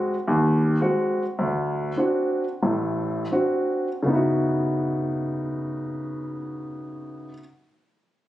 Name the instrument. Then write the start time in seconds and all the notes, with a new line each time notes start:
grand piano
Already playing: G#3 C4 F#4
0.28 D#2
0.81 G#3 C4 F#4
1.39 D2
1.97 C4 D4 F#4
2.63 A1 A2
3.32 C4 D4 F#4
4.03 C#3 B3
4.09 D#4 E4
4.15 F#4